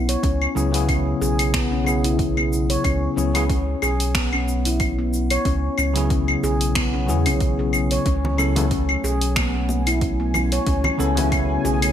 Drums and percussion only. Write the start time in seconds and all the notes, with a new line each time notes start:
0.09 open hi-hat, shaker
0.23 kick, open hi-hat, shaker
0.42 claves
0.57 shaker
0.74 open hi-hat, shaker
0.89 kick, open hi-hat, claves, shaker
1.22 shaker
1.39 open hi-hat, claves, shaker
1.54 finger snap, kick, open hi-hat, shaker
1.87 claves, shaker
2.04 open hi-hat, shaker
2.19 kick, open hi-hat, shaker
2.37 claves
2.53 shaker
2.70 open hi-hat, shaker
2.84 kick, open hi-hat, claves, shaker
3.18 shaker
3.35 open hi-hat, claves, shaker
3.50 kick, open hi-hat, shaker
3.82 claves, shaker
4.00 open hi-hat, shaker
4.15 finger snap, kick, open hi-hat, shaker
4.33 claves
4.48 shaker
4.65 open hi-hat, shaker
4.80 kick, open hi-hat, claves, shaker
5.13 shaker
5.30 open hi-hat, claves, shaker
5.45 kick, open hi-hat, shaker
5.78 claves, shaker
5.96 open hi-hat, shaker
6.10 kick, open hi-hat, shaker
6.28 claves
6.44 shaker
6.61 open hi-hat, shaker
6.75 finger snap, kick, open hi-hat, claves, shaker
7.09 shaker
7.26 open hi-hat, claves, shaker
7.40 kick, open hi-hat, shaker
7.73 claves, shaker
7.91 open hi-hat, shaker
8.06 kick, open hi-hat, shaker
8.25 low conga
8.38 claves, shaker
8.56 open hi-hat, high conga, low conga, shaker
8.71 kick, open hi-hat, shaker
8.89 claves
9.04 shaker
9.21 open hi-hat, shaker
9.36 finger snap, kick, open hi-hat, high conga, claves, shaker
9.69 high conga, shaker
9.86 open hi-hat, high bongo, claves, shaker
10.01 kick, open hi-hat, shaker
10.34 low conga, claves, shaker
10.52 open hi-hat, shaker
10.67 kick, open hi-hat, shaker
10.84 low conga, claves
11.00 shaker
11.17 open hi-hat, high bongo, high conga, low conga, shaker
11.32 kick, open hi-hat, claves, shaker
11.65 high bongo, shaker
11.82 open hi-hat, claves, shaker